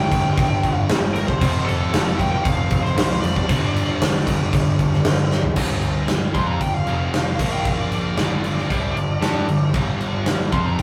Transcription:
0.00 1.39 G2 medium
0.00 1.40 D3 loud
0.00 1.41 G3 loud
0.00 0.75 G5 loud
0.12 0.33 G1 medium
0.12 kick medium
0.12 crash medium
0.38 0.59 G1 loud
0.38 kick loud
0.38 crash medium
0.63 0.85 G1 medium
0.63 kick medium
0.63 crash medium
0.75 1.19 F5 loud
0.89 1.33 G1 loud
0.89 snare loud
0.89 crash medium
1.14 1.27 A#4 medium
1.14 crash medium
1.27 1.65 C5 loud
1.27 kick medium
1.40 1.85 F1 loud
1.40 3.47 F2 loud
1.40 3.48 C3 loud
1.40 3.49 F3 loud
1.40 kick loud
1.40 crash medium
1.65 2.20 A4 medium
1.65 crash medium
1.93 2.37 F1 loud
1.93 snare loud
1.93 crash medium
2.17 2.31 G5 medium
2.17 kick medium
2.17 crash medium
2.32 2.45 G5 loud
2.44 2.67 F1 medium
2.44 2.82 F5 loud
2.44 kick loud
2.44 crash medium
2.70 2.93 F1 medium
2.70 kick medium
2.70 crash medium
2.83 3.21 C5 medium
2.83 snare soft
2.96 3.18 C2 loud
2.96 snare loud
2.96 crash loud
3.22 3.45 F1 medium
3.22 5.01 D5 medium
3.22 crash medium
3.36 kick medium
3.48 3.93 G1 loud
3.48 5.55 G2 loud
3.48 5.56 D3 loud
3.48 5.57 G3 loud
3.48 kick loud
3.48 crash medium
3.76 crash medium
4.01 4.23 G1 loud
4.01 snare loud
4.01 crash medium
4.27 4.49 G1 medium
4.27 kick medium
4.27 crash medium
4.53 4.75 G1 loud
4.53 kick loud
4.53 crash medium
4.79 5.01 G1 medium
4.79 kick medium
4.79 crash medium
4.93 snare soft
5.05 5.49 G1 medium
5.05 snare loud
5.05 crash medium
5.31 snare medium
5.43 floor tom medium
5.56 6.31 G1 loud
5.56 6.34 G2 medium
5.56 6.33 D3 loud
5.56 6.34 G3 loud
5.56 kick loud
5.56 crash loud
5.56 crash medium
5.82 crash medium
6.08 snare loud
6.08 crash medium
6.33 6.59 F2 medium
6.33 6.60 F3 medium
6.33 6.60 C4 medium
6.33 6.60 F4 medium
6.33 6.47 C6 medium
6.33 kick loud
6.33 crash medium
6.47 6.60 A#5 medium
6.61 6.85 G1 medium
6.61 6.82 G2 medium
6.61 6.82 D3 medium
6.61 6.74 G5 medium
6.61 kick medium
6.61 crash medium
6.74 7.50 F5 medium
6.86 7.36 F1 medium
6.86 7.38 F2 medium
6.86 7.38 C3 medium
6.86 7.38 F3 loud
6.86 crash medium
7.14 snare loud
7.14 crash medium
7.38 8.14 A#1 medium
7.38 8.16 A#2 medium
7.38 8.17 F3 medium
7.38 8.17 A#3 medium
7.38 kick loud
7.38 crash loud
7.52 7.67 G5 medium
7.65 7.79 F5 medium
7.65 kick loud
7.65 crash medium
7.80 7.92 D5 medium
7.92 8.18 D5 medium
7.92 crash medium
8.17 8.66 G1 medium
8.17 8.69 G2 medium
8.17 8.69 D3 loud
8.17 8.69 G3 loud
8.17 9.71 D5 medium
8.17 snare loud
8.17 crash medium
8.44 crash medium
8.57 snare soft
8.69 8.95 C2 medium
8.69 8.95 C3 medium
8.69 8.96 G3 medium
8.69 8.96 C4 loud
8.69 kick medium
8.69 crash medium
8.96 9.20 G1 medium
8.96 9.17 G2 medium
8.96 9.17 D3 medium
8.96 crash medium
9.21 9.46 G2 medium
9.21 9.47 G3 loud
9.21 9.47 D4 loud
9.21 9.48 G4 loud
9.21 snare loud
9.21 crash medium
9.48 9.73 G1 medium
9.48 9.69 G2 medium
9.48 9.70 D3 medium
9.48 crash medium
9.74 10.49 G1 loud
9.74 10.52 G2 medium
9.74 10.52 D3 loud
9.74 10.53 G3 loud
9.74 kick loud
9.74 crash medium
10.01 crash medium
10.26 snare loud
10.26 crash medium
10.40 snare soft
10.52 10.77 F2 medium
10.52 10.78 F3 medium
10.52 10.79 C4 loud
10.52 10.79 F4 loud
10.52 10.65 C6 medium
10.52 kick loud
10.52 crash medium
10.65 10.79 A#5 medium
10.79 10.82 G2 medium
10.79 kick medium

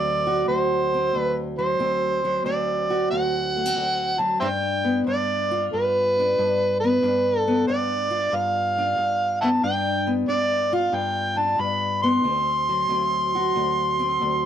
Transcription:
0.00 0.48 D2 medium
0.00 1.57 F#3 medium
0.00 0.92 C4 medium
0.00 0.48 D5 medium
0.27 1.77 F#4 medium
0.48 1.13 D2 medium
0.48 1.18 C5 medium
0.94 1.78 C4 medium
1.15 1.78 D2 medium
1.15 1.42 B4 medium
1.59 2.23 F#3 medium
1.59 2.41 C5 medium
1.79 2.43 D2 medium
1.79 2.45 C4 medium
2.25 4.18 F#3 medium
2.44 3.10 D2 medium
2.44 3.54 C4 medium
2.44 3.06 D5 medium
2.90 4.39 F#4 medium
3.11 3.75 D2 medium
3.11 4.21 F#5 medium
3.56 3.66 A3 soft
3.66 4.41 C4 soft
3.76 4.41 D2 medium
4.19 4.41 F#3 medium
4.19 4.40 A5 medium
4.40 5.06 G2 medium
4.40 5.07 D4 medium
4.40 4.48 C5 medium
4.40 4.46 E5 medium
4.40 5.02 G5 medium
4.84 6.84 B3 soft
5.07 5.73 G2 medium
5.07 6.19 D4 medium
5.07 5.68 D5 medium
5.51 7.06 F4 medium
5.73 6.38 G2 medium
5.73 6.77 B4 medium
6.19 7.03 D4 medium
6.39 7.02 G2 medium
6.80 7.39 B4 medium
6.84 7.47 B3 medium
7.03 7.68 G2 medium
7.03 7.68 D4 medium
7.39 7.63 A4 medium
7.48 9.42 B3 soft
7.67 8.32 G2 medium
7.67 8.78 D4 medium
7.67 8.37 D5 medium
8.10 9.60 F4 medium
8.32 8.96 G2 medium
8.32 9.40 F5 medium
8.78 9.64 D4 medium
8.98 9.60 G2 medium
9.41 9.61 B3 medium
9.41 9.48 E5 medium
9.41 9.49 F#5 medium
9.41 9.61 A5 medium
9.63 10.27 G2 medium
9.63 10.28 D4 medium
9.63 10.12 G5 loud
10.07 12.02 B3 medium
10.28 10.91 G2 medium
10.28 11.36 D4 medium
10.28 10.75 D5 medium
10.73 12.22 F4 medium
10.73 10.97 F5 medium
10.92 11.58 G2 medium
10.92 11.39 G5 loud
11.37 12.22 D4 medium
11.37 11.62 A5 medium
11.59 12.22 G2 medium
11.59 12.02 B5 medium
12.02 12.22 B3 medium
12.02 14.46 C6 loud
12.24 12.88 D2 medium
12.24 12.89 C4 medium
12.69 14.46 F#3 medium
12.89 13.55 D2 medium
12.89 13.98 C4 medium
13.35 14.46 F#4 medium
13.56 14.20 D2 medium
13.99 14.46 C4 medium
14.21 14.46 D2 medium

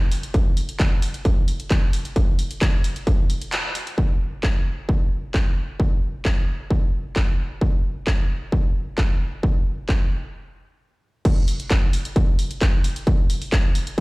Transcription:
0.12 open hi-hat loud
0.23 closed hi-hat medium
0.34 kick loud
0.34 closed hi-hat medium
0.57 open hi-hat loud
0.69 closed hi-hat medium
0.80 kick loud
0.80 clap loud
0.80 closed hi-hat medium
1.02 open hi-hat loud
1.14 closed hi-hat medium
1.25 kick loud
1.25 closed hi-hat medium
1.48 open hi-hat loud
1.60 closed hi-hat medium
1.71 kick loud
1.71 clap loud
1.71 closed hi-hat medium
1.93 open hi-hat loud
2.05 closed hi-hat medium
2.16 kick loud
2.16 closed hi-hat medium
2.39 open hi-hat loud
2.51 closed hi-hat medium
2.61 kick loud
2.61 clap loud
2.61 closed hi-hat medium
2.84 open hi-hat loud
2.96 closed hi-hat medium
3.07 kick loud
3.07 closed hi-hat medium
3.30 open hi-hat loud
3.42 closed hi-hat medium
3.52 clap loud
3.52 closed hi-hat medium
3.75 open hi-hat loud
3.87 closed hi-hat medium
3.98 kick loud
4.43 kick loud
4.43 clap loud
4.89 kick loud
5.34 kick loud
5.34 clap loud
5.80 kick loud
6.25 kick loud
6.25 clap loud
6.70 kick loud
7.16 kick loud
7.16 clap loud
7.61 kick loud
8.07 kick loud
8.07 clap loud
8.52 kick loud
8.98 kick loud
8.98 clap loud
9.43 kick loud
9.89 kick loud
9.89 clap loud
11.25 kick loud
11.25 closed hi-hat medium
11.25 crash loud
11.48 open hi-hat loud
11.60 closed hi-hat medium
11.71 kick loud
11.71 clap loud
11.71 closed hi-hat medium
11.93 open hi-hat loud
12.05 closed hi-hat medium
12.16 kick loud
12.16 closed hi-hat medium
12.39 open hi-hat loud
12.51 closed hi-hat medium
12.61 kick loud
12.61 clap loud
12.61 closed hi-hat medium
12.84 open hi-hat loud
12.96 closed hi-hat medium
13.07 kick loud
13.07 closed hi-hat medium
13.30 open hi-hat loud
13.42 open hi-hat medium
13.52 kick loud
13.52 clap loud
13.52 closed hi-hat medium
13.75 open hi-hat loud
13.87 closed hi-hat medium

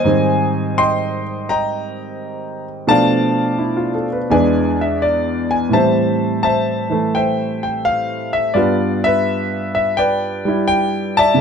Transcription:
0.00 1.22 C5 medium
0.00 0.77 D#5 medium
0.00 0.79 G#5 loud
0.04 2.88 G#2 soft
0.04 2.88 D#3 soft
0.04 2.89 G3 soft
0.04 2.89 C4 medium
0.78 1.49 D#5 medium
0.78 1.49 G5 medium
0.78 1.50 C6 loud
1.49 2.86 D#5 medium
1.49 2.86 G5 medium
1.49 2.64 A#5 medium
2.87 4.30 B2 medium
2.87 4.30 F3 medium
2.87 4.30 A3 medium
2.87 4.30 D4 medium
2.87 4.27 D5 medium
2.87 4.27 F5 medium
2.87 4.04 A5 loud
3.58 3.93 E4 soft
3.77 4.08 F4 soft
3.95 4.16 A4 soft
4.13 4.31 B4 medium
4.30 5.72 E2 medium
4.30 5.70 E3 medium
4.30 5.72 G#3 medium
4.30 5.73 D4 medium
4.30 5.69 B4 medium
4.30 5.01 D5 medium
4.30 4.76 G#5 medium
4.81 5.03 E5 medium
5.02 5.52 D5 medium
5.51 5.73 G#5 medium
5.69 8.54 A2 soft
5.69 6.88 E3 soft
5.69 8.53 G3 soft
5.73 8.57 C4 medium
5.73 6.43 C5 medium
5.73 6.43 E5 medium
5.73 6.41 A5 medium
6.43 7.15 C5 medium
6.43 7.15 E5 medium
6.43 7.16 A5 medium
6.90 8.55 E3 soft
6.90 8.56 A3 medium
7.15 8.53 C5 medium
7.15 8.32 E5 medium
7.15 7.62 G5 medium
7.63 7.85 G5 medium
7.85 8.30 F5 medium
8.33 8.56 E5 medium
8.54 11.38 G2 medium
8.54 10.44 G3 soft
8.54 11.39 B3 medium
8.54 11.39 F4 medium
8.54 9.05 B4 medium
8.54 9.05 D5 medium
9.04 9.97 B4 medium
9.04 9.73 E5 loud
9.75 9.98 E5 medium
9.97 11.36 B4 medium
9.97 11.18 D5 medium
9.97 10.64 G5 medium
10.45 11.38 G3 soft
10.45 11.40 E4 medium
10.68 11.18 G5 loud
11.17 11.41 D5 medium
11.17 11.41 E5 medium
11.17 11.41 A5 loud
11.34 11.41 C3 medium
11.34 11.41 A3 medium

